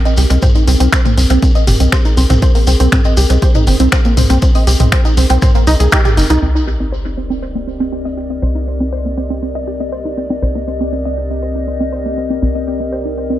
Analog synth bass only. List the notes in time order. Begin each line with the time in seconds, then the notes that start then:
0.18 C2
0.30 C2
0.68 C2
0.80 C2
1.17 C2
1.30 C2
1.67 G1
1.80 C2
2.17 C2
2.30 C2
2.67 C2
2.80 C2
3.17 C2
3.30 C2
3.67 G1
3.80 C2
4.17 C2
4.30 C2
4.67 C2
4.80 C2
5.17 C2
5.30 C2
5.67 C2
5.80 C2
6.17 G1
6.30 C2
6.42 C2
8.42 C2
10.42 C2
12.42 C2